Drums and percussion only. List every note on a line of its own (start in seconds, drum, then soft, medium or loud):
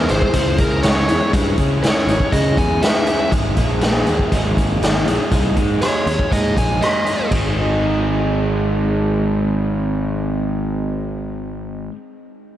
0.09 closed hi-hat medium
0.22 kick medium
0.34 kick medium
0.34 closed hi-hat medium
0.58 kick medium
0.58 closed hi-hat medium
0.83 snare loud
0.83 closed hi-hat medium
1.08 closed hi-hat medium
1.33 kick loud
1.33 closed hi-hat medium
1.57 kick medium
1.57 closed hi-hat medium
1.83 snare medium
1.83 closed hi-hat medium
2.08 closed hi-hat medium
2.20 kick medium
2.32 kick medium
2.32 closed hi-hat medium
2.57 kick medium
2.57 closed hi-hat medium
2.82 snare medium
2.82 closed hi-hat medium
3.07 closed hi-hat soft
3.32 kick medium
3.32 closed hi-hat medium
3.57 kick medium
3.57 closed hi-hat medium
3.81 snare medium
3.81 closed hi-hat medium
4.06 closed hi-hat soft
4.19 kick medium
4.32 kick medium
4.32 closed hi-hat medium
4.57 kick medium
4.57 closed hi-hat medium
4.83 snare medium
4.83 closed hi-hat medium
5.07 closed hi-hat medium
5.31 kick medium
5.31 closed hi-hat medium
5.57 kick medium
5.57 closed hi-hat medium
5.82 cross-stick medium
5.82 closed hi-hat medium
6.07 closed hi-hat soft
6.19 kick medium
6.32 kick medium
6.32 closed hi-hat medium
6.57 kick medium
6.57 closed hi-hat medium
6.82 cross-stick medium
6.82 closed hi-hat medium
7.06 closed hi-hat soft
7.31 kick medium
7.31 ride medium